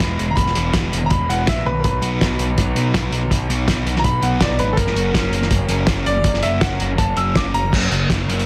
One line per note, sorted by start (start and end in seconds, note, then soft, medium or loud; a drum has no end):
0.00 0.24 E3 medium
0.00 0.18 F#3 medium
0.00 0.91 G#3 medium
0.00 0.74 B3 medium
0.00 0.25 E4 medium
0.00 0.34 B5 medium
0.00 snare loud
0.00 closed hi-hat loud
0.18 0.36 E1 medium
0.18 1.10 F#3 medium
0.18 closed hi-hat medium
0.31 0.34 A#5 medium
0.35 0.54 E1 loud
0.35 1.29 E2 medium
0.35 0.72 B5 medium
0.35 kick loud
0.35 closed hi-hat medium
0.47 snare soft
0.55 0.73 E1 loud
0.55 0.72 E3 medium
0.55 0.73 G#3 medium
0.55 0.73 B3 medium
0.55 0.74 E4 medium
0.55 1.47 E4 medium
0.55 closed hi-hat medium
0.73 0.97 E3 medium
0.73 0.98 G#3 medium
0.73 1.29 B3 medium
0.73 0.98 B3 medium
0.73 0.98 E4 medium
0.73 kick loud
0.73 snare loud
0.73 closed hi-hat loud
0.92 1.09 E1 medium
0.92 1.46 G#3 medium
0.92 closed hi-hat medium
1.06 1.09 A#5 medium
1.06 1.28 B5 medium
1.10 1.28 E1 medium
1.10 2.58 F#3 medium
1.10 kick loud
1.10 closed hi-hat medium
1.29 1.46 E1 medium
1.29 1.45 E3 medium
1.29 1.46 G#3 medium
1.29 2.21 B3 medium
1.29 1.46 B3 medium
1.29 1.46 E4 loud
1.29 1.47 F#5 medium
1.29 closed hi-hat medium
1.47 1.65 E3 medium
1.47 1.65 G#3 medium
1.47 1.66 G#3 medium
1.47 1.66 E5 medium
1.47 kick loud
1.47 snare loud
1.47 closed hi-hat medium
1.65 1.83 B1 medium
1.65 1.84 B2 medium
1.65 1.83 B4 loud
1.65 high tom medium
1.80 1.82 A#4 medium
1.84 2.01 B1 medium
1.84 2.76 B2 medium
1.84 2.91 B4 medium
1.84 kick loud
1.84 closed hi-hat loud
2.02 2.19 B1 medium
2.02 2.20 B2 medium
2.02 2.20 F#3 medium
2.02 2.21 B3 medium
2.02 2.20 D#4 loud
2.02 3.50 F#4 medium
2.02 closed hi-hat medium
2.21 2.38 B1 medium
2.21 2.45 B2 medium
2.21 2.45 F#3 medium
2.21 2.45 B3 medium
2.21 2.76 D#4 medium
2.21 2.45 D#4 medium
2.21 kick loud
2.21 snare loud
2.21 closed hi-hat medium
2.39 2.56 B1 medium
2.39 2.94 B3 medium
2.39 closed hi-hat medium
2.58 2.74 B1 medium
2.58 3.13 F#3 medium
2.58 kick loud
2.58 closed hi-hat medium
2.75 2.93 B1 medium
2.75 2.92 B2 medium
2.75 2.93 F#3 medium
2.75 2.93 B3 medium
2.75 2.94 D#4 medium
2.75 3.67 D#4 medium
2.75 closed hi-hat medium
2.94 3.10 B1 loud
2.94 3.18 B2 medium
2.94 3.18 F#3 medium
2.94 3.18 B3 medium
2.94 3.86 B3 medium
2.94 3.18 D#4 medium
2.94 kick loud
2.94 snare loud
2.94 closed hi-hat loud
3.11 3.29 B1 medium
3.11 4.05 F#3 medium
3.11 closed hi-hat medium
3.31 3.48 B1 medium
3.31 4.23 B2 medium
3.31 kick loud
3.31 closed hi-hat loud
3.49 3.66 B1 medium
3.49 3.66 B2 medium
3.49 3.66 F#3 medium
3.49 3.67 B3 medium
3.49 3.67 D#4 loud
3.49 4.95 F#4 medium
3.49 closed hi-hat medium
3.67 3.85 B1 medium
3.67 3.91 B2 medium
3.67 3.91 F#3 medium
3.67 3.91 B3 medium
3.67 3.92 D#4 medium
3.67 4.22 D#4 medium
3.67 kick loud
3.67 snare loud
3.67 closed hi-hat loud
3.86 4.03 B1 medium
3.86 4.40 B3 medium
3.86 closed hi-hat medium
3.96 4.02 A#5 medium
3.96 snare soft
4.04 4.21 B1 medium
4.04 4.58 F#3 medium
4.04 4.22 B5 loud
4.04 kick loud
4.04 closed hi-hat loud
4.22 4.39 B1 medium
4.22 4.39 B2 medium
4.22 4.39 F#3 loud
4.22 4.39 B3 loud
4.22 4.40 D#4 loud
4.22 4.78 D#4 medium
4.22 4.41 F#5 medium
4.22 closed hi-hat medium
4.40 4.58 B1 medium
4.40 4.64 B2 medium
4.40 4.65 F#3 medium
4.40 4.65 B3 medium
4.40 4.78 B3 medium
4.40 4.65 D#4 medium
4.40 4.59 D5 medium
4.40 kick loud
4.40 snare loud
4.40 closed hi-hat medium
4.59 4.76 G#1 medium
4.59 5.52 F#3 medium
4.59 4.77 B4 medium
4.59 closed hi-hat medium
4.73 4.76 A4 medium
4.77 4.94 F#1 loud
4.77 6.25 F#2 medium
4.77 5.85 A#4 loud
4.77 kick loud
4.77 closed hi-hat medium
4.87 snare soft
4.94 5.12 F#1 medium
4.94 5.11 C#3 medium
4.94 5.12 F#3 medium
4.94 5.13 A#3 medium
4.94 5.13 C#4 loud
4.94 6.43 F#4 medium
4.94 closed hi-hat medium
5.13 5.30 F#1 medium
5.13 5.38 C#3 medium
5.13 5.38 F#3 medium
5.13 5.38 A#3 medium
5.13 5.38 C#4 medium
5.13 5.70 C#4 medium
5.13 kick loud
5.13 snare loud
5.13 closed hi-hat medium
5.31 5.49 F#1 medium
5.31 5.88 A#3 medium
5.31 closed hi-hat medium
5.42 snare soft
5.51 5.68 F#1 medium
5.51 6.05 F#3 medium
5.51 kick loud
5.51 closed hi-hat loud
5.68 5.86 F#1 loud
5.68 5.86 C#3 medium
5.68 5.86 F#3 medium
5.68 5.87 A#3 loud
5.68 5.87 C#4 loud
5.68 6.61 C#4 medium
5.68 closed hi-hat medium
5.87 6.05 F#1 loud
5.87 6.11 C#3 medium
5.87 6.12 F#3 medium
5.87 6.12 A#3 medium
5.87 6.78 A#3 medium
5.87 kick loud
5.87 snare loud
5.87 closed hi-hat loud
6.06 6.23 F#1 medium
6.06 6.97 F#3 medium
6.06 6.42 D5 loud
6.06 closed hi-hat medium
6.24 6.42 F#1 loud
6.24 7.17 F#2 medium
6.24 kick loud
6.24 closed hi-hat medium
6.34 snare soft
6.43 6.61 F#1 loud
6.43 6.61 C#3 medium
6.43 6.61 F#3 medium
6.43 6.61 A#3 medium
6.43 6.62 C#4 medium
6.43 7.36 F#4 medium
6.43 6.61 E5 medium
6.43 closed hi-hat medium
6.61 6.79 F#1 medium
6.61 6.86 C#3 medium
6.61 6.86 F#3 medium
6.61 6.86 A#3 medium
6.61 7.15 C#4 medium
6.61 6.87 C#4 medium
6.61 6.97 F#5 medium
6.61 kick loud
6.61 snare loud
6.61 closed hi-hat loud
6.80 6.98 F#1 loud
6.80 7.34 A#3 medium
6.80 closed hi-hat medium
6.98 7.15 F#1 loud
6.98 7.53 F#3 medium
6.98 7.16 A5 medium
6.98 kick loud
6.98 closed hi-hat medium
7.16 7.34 F#1 medium
7.16 7.35 C#3 medium
7.16 7.35 F#3 medium
7.16 7.35 A#3 loud
7.16 7.72 C#4 medium
7.16 7.35 C#4 loud
7.16 7.35 E6 medium
7.16 closed hi-hat medium
7.35 7.53 F#1 loud
7.35 7.60 C#3 medium
7.35 7.60 F#3 medium
7.35 7.72 A#3 medium
7.35 7.60 A#3 medium
7.35 7.60 C#4 medium
7.35 7.54 D6 medium
7.35 kick loud
7.35 snare loud
7.35 closed hi-hat medium
7.54 7.71 F#1 medium
7.54 7.72 F#3 medium
7.54 7.72 A#5 loud
7.54 closed hi-hat medium
7.71 7.87 F#1 loud
7.71 8.46 F#2 medium
7.71 8.46 F#3 medium
7.71 7.90 F#3 medium
7.71 7.90 A#3 medium
7.71 8.46 C#4 medium
7.71 7.91 C#4 loud
7.71 8.46 A#4 medium
7.71 kick loud
7.71 crash loud
7.82 closed hi-hat soft
7.90 8.05 F#1 medium
7.90 8.46 C#3 medium
7.90 8.08 F#3 medium
7.90 8.08 A#3 medium
7.90 closed hi-hat medium
8.09 8.24 F#1 medium
8.09 8.26 F#3 medium
8.09 8.46 F#3 medium
8.09 8.26 A#3 medium
8.09 kick loud
8.09 snare loud
8.09 closed hi-hat loud
8.27 8.43 F#1 loud
8.27 8.44 F#3 medium
8.27 8.44 A#3 medium
8.27 8.46 C#4 medium
8.27 closed hi-hat medium
8.39 closed hi-hat medium